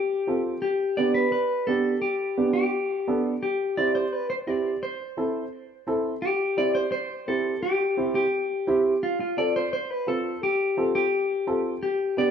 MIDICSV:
0, 0, Header, 1, 3, 480
1, 0, Start_track
1, 0, Key_signature, 0, "major"
1, 0, Tempo, 349854
1, 866, Time_signature, 4, 2, 24, 8
1, 16887, End_track
2, 0, Start_track
2, 0, Title_t, "Clean electric guitar"
2, 0, Program_c, 0, 27
2, 0, Note_on_c, 0, 67, 94
2, 566, Note_off_c, 0, 67, 0
2, 849, Note_on_c, 0, 67, 84
2, 1303, Note_off_c, 0, 67, 0
2, 1332, Note_on_c, 0, 74, 84
2, 1562, Note_off_c, 0, 74, 0
2, 1570, Note_on_c, 0, 71, 87
2, 1795, Note_off_c, 0, 71, 0
2, 1812, Note_on_c, 0, 71, 81
2, 2264, Note_off_c, 0, 71, 0
2, 2290, Note_on_c, 0, 69, 84
2, 2743, Note_off_c, 0, 69, 0
2, 2765, Note_on_c, 0, 67, 79
2, 3444, Note_off_c, 0, 67, 0
2, 3477, Note_on_c, 0, 67, 86
2, 4396, Note_off_c, 0, 67, 0
2, 4700, Note_on_c, 0, 67, 81
2, 5148, Note_off_c, 0, 67, 0
2, 5179, Note_on_c, 0, 74, 90
2, 5414, Note_off_c, 0, 74, 0
2, 5419, Note_on_c, 0, 72, 84
2, 5660, Note_off_c, 0, 72, 0
2, 5660, Note_on_c, 0, 71, 84
2, 5891, Note_off_c, 0, 71, 0
2, 5897, Note_on_c, 0, 72, 75
2, 5965, Note_off_c, 0, 72, 0
2, 6139, Note_on_c, 0, 74, 93
2, 6618, Note_off_c, 0, 74, 0
2, 6623, Note_on_c, 0, 72, 82
2, 8009, Note_off_c, 0, 72, 0
2, 8534, Note_on_c, 0, 67, 91
2, 9025, Note_on_c, 0, 74, 97
2, 9034, Note_off_c, 0, 67, 0
2, 9248, Note_off_c, 0, 74, 0
2, 9258, Note_on_c, 0, 72, 97
2, 9476, Note_off_c, 0, 72, 0
2, 9493, Note_on_c, 0, 72, 93
2, 9945, Note_off_c, 0, 72, 0
2, 9988, Note_on_c, 0, 69, 84
2, 10457, Note_off_c, 0, 69, 0
2, 10463, Note_on_c, 0, 67, 96
2, 11133, Note_off_c, 0, 67, 0
2, 11184, Note_on_c, 0, 67, 95
2, 12090, Note_off_c, 0, 67, 0
2, 12389, Note_on_c, 0, 65, 91
2, 12611, Note_off_c, 0, 65, 0
2, 12627, Note_on_c, 0, 65, 73
2, 12849, Note_off_c, 0, 65, 0
2, 12869, Note_on_c, 0, 74, 94
2, 13090, Note_off_c, 0, 74, 0
2, 13118, Note_on_c, 0, 72, 97
2, 13335, Note_off_c, 0, 72, 0
2, 13350, Note_on_c, 0, 72, 90
2, 13588, Note_off_c, 0, 72, 0
2, 13588, Note_on_c, 0, 71, 84
2, 13826, Note_off_c, 0, 71, 0
2, 13832, Note_on_c, 0, 69, 88
2, 14308, Note_off_c, 0, 69, 0
2, 14314, Note_on_c, 0, 67, 92
2, 14979, Note_off_c, 0, 67, 0
2, 15026, Note_on_c, 0, 67, 90
2, 15930, Note_off_c, 0, 67, 0
2, 16225, Note_on_c, 0, 67, 90
2, 16671, Note_off_c, 0, 67, 0
2, 16715, Note_on_c, 0, 74, 94
2, 16887, Note_off_c, 0, 74, 0
2, 16887, End_track
3, 0, Start_track
3, 0, Title_t, "Upright piano"
3, 0, Program_c, 1, 0
3, 373, Note_on_c, 1, 60, 76
3, 379, Note_on_c, 1, 65, 70
3, 383, Note_on_c, 1, 69, 78
3, 715, Note_off_c, 1, 60, 0
3, 718, Note_off_c, 1, 65, 0
3, 720, Note_off_c, 1, 69, 0
3, 1344, Note_on_c, 1, 59, 71
3, 1349, Note_on_c, 1, 62, 62
3, 1352, Note_on_c, 1, 67, 73
3, 1681, Note_off_c, 1, 59, 0
3, 1683, Note_off_c, 1, 62, 0
3, 1685, Note_off_c, 1, 67, 0
3, 2301, Note_on_c, 1, 59, 68
3, 2303, Note_on_c, 1, 62, 58
3, 2311, Note_on_c, 1, 67, 76
3, 2639, Note_off_c, 1, 59, 0
3, 2640, Note_off_c, 1, 62, 0
3, 2644, Note_off_c, 1, 67, 0
3, 3258, Note_on_c, 1, 59, 73
3, 3261, Note_on_c, 1, 62, 67
3, 3265, Note_on_c, 1, 67, 75
3, 3597, Note_off_c, 1, 59, 0
3, 3599, Note_off_c, 1, 62, 0
3, 3601, Note_off_c, 1, 67, 0
3, 4219, Note_on_c, 1, 59, 81
3, 4224, Note_on_c, 1, 62, 68
3, 4227, Note_on_c, 1, 69, 83
3, 4558, Note_off_c, 1, 59, 0
3, 4560, Note_off_c, 1, 62, 0
3, 4562, Note_off_c, 1, 69, 0
3, 5176, Note_on_c, 1, 60, 70
3, 5185, Note_on_c, 1, 64, 66
3, 5190, Note_on_c, 1, 67, 74
3, 5517, Note_off_c, 1, 60, 0
3, 5521, Note_off_c, 1, 64, 0
3, 5523, Note_off_c, 1, 67, 0
3, 6130, Note_on_c, 1, 60, 60
3, 6135, Note_on_c, 1, 64, 58
3, 6140, Note_on_c, 1, 67, 72
3, 6473, Note_off_c, 1, 60, 0
3, 6476, Note_off_c, 1, 64, 0
3, 6478, Note_off_c, 1, 67, 0
3, 7093, Note_on_c, 1, 60, 68
3, 7097, Note_on_c, 1, 64, 68
3, 7104, Note_on_c, 1, 69, 77
3, 7435, Note_off_c, 1, 60, 0
3, 7437, Note_off_c, 1, 64, 0
3, 7440, Note_off_c, 1, 69, 0
3, 8050, Note_on_c, 1, 60, 74
3, 8059, Note_on_c, 1, 64, 71
3, 8063, Note_on_c, 1, 69, 91
3, 8393, Note_off_c, 1, 60, 0
3, 8398, Note_off_c, 1, 64, 0
3, 8400, Note_off_c, 1, 69, 0
3, 9014, Note_on_c, 1, 60, 69
3, 9018, Note_on_c, 1, 64, 65
3, 9026, Note_on_c, 1, 67, 72
3, 9356, Note_off_c, 1, 60, 0
3, 9357, Note_off_c, 1, 64, 0
3, 9361, Note_off_c, 1, 67, 0
3, 9982, Note_on_c, 1, 60, 67
3, 9990, Note_on_c, 1, 64, 55
3, 9993, Note_on_c, 1, 67, 71
3, 10319, Note_off_c, 1, 60, 0
3, 10323, Note_off_c, 1, 64, 0
3, 10325, Note_off_c, 1, 67, 0
3, 10936, Note_on_c, 1, 60, 77
3, 10943, Note_on_c, 1, 64, 66
3, 10949, Note_on_c, 1, 67, 78
3, 11276, Note_off_c, 1, 60, 0
3, 11280, Note_off_c, 1, 64, 0
3, 11283, Note_off_c, 1, 67, 0
3, 11898, Note_on_c, 1, 60, 83
3, 11907, Note_on_c, 1, 64, 79
3, 11912, Note_on_c, 1, 67, 97
3, 12237, Note_off_c, 1, 60, 0
3, 12242, Note_off_c, 1, 64, 0
3, 12244, Note_off_c, 1, 67, 0
3, 12856, Note_on_c, 1, 60, 65
3, 12864, Note_on_c, 1, 65, 61
3, 12870, Note_on_c, 1, 69, 82
3, 13196, Note_off_c, 1, 60, 0
3, 13200, Note_off_c, 1, 65, 0
3, 13204, Note_off_c, 1, 69, 0
3, 13814, Note_on_c, 1, 60, 66
3, 13818, Note_on_c, 1, 65, 67
3, 13824, Note_on_c, 1, 69, 68
3, 14155, Note_off_c, 1, 60, 0
3, 14157, Note_off_c, 1, 65, 0
3, 14160, Note_off_c, 1, 69, 0
3, 14779, Note_on_c, 1, 60, 77
3, 14787, Note_on_c, 1, 65, 65
3, 14788, Note_on_c, 1, 69, 85
3, 15118, Note_off_c, 1, 60, 0
3, 15122, Note_off_c, 1, 65, 0
3, 15122, Note_off_c, 1, 69, 0
3, 15736, Note_on_c, 1, 60, 72
3, 15739, Note_on_c, 1, 65, 69
3, 15745, Note_on_c, 1, 69, 91
3, 16076, Note_off_c, 1, 60, 0
3, 16078, Note_off_c, 1, 65, 0
3, 16081, Note_off_c, 1, 69, 0
3, 16700, Note_on_c, 1, 59, 74
3, 16704, Note_on_c, 1, 62, 65
3, 16709, Note_on_c, 1, 67, 84
3, 16887, Note_off_c, 1, 59, 0
3, 16887, Note_off_c, 1, 62, 0
3, 16887, Note_off_c, 1, 67, 0
3, 16887, End_track
0, 0, End_of_file